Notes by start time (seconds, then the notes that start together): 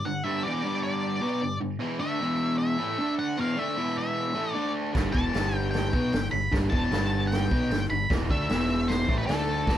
0.05 G2 D3 F#5
0.24 G2 D3 G3 E5
0.43 E2 B2 E3 D5
0.64 G2 D3 G3
0.84 D5
1.22 B2 F#3 B3
1.42 G2 D3
1.61 G2 D3
1.80 E2 B2 E3
2.00 D3 A3 D4 E5
2.20 E2 B2 E3
2.58 E5
2.78 A2 E3 A3
2.98 D3 A3 D4
3.19 F#5
3.37 E2 B2 E3 F5
3.57 D3 A3 D4 E5
3.77 E2 B2 E3
3.98 E5
4.34 A2 E3 A3
4.52 D3 A3 D4 D5
4.94 G1 G2 D3 G3, kick, snare, crash
5.13 E1 E2 B2 E3 A5, kick
5.33 G1 G2 D3 G3, snare, open hi-hat
5.57 G5
5.71 G5, open hi-hat
5.75 snare
5.93 B1 B2 F#3 B3, kick
6.13 G1 G2 D3, snare, open hi-hat
6.31 G1 G2 D3 B5
6.52 G1 G2 D3 G3, kick, snare, open hi-hat
6.70 E1 E2 B2 E3 A5, kick
6.91 G1 G2 D3 G3, snare, open hi-hat
7.27 G5
7.32 snare, open hi-hat
7.51 B1 B2 F#3 B3, kick
7.70 G1 G2 D3, snare, open hi-hat
7.90 G1 G2 D3 B5
8.10 E1 E2 B2 E3, kick, snare, open hi-hat
8.29 D2 D3 A3 D4 E5, kick
8.49 E1 E2 B2 E3, snare, open hi-hat
8.88 C5, snare, open hi-hat
9.08 A1 A2 E3 A3, kick
9.18 B4
9.26 D2 D3 A3 D4 A4, snare, open hi-hat
9.66 E1 E2 B2 E3, kick, snare, open hi-hat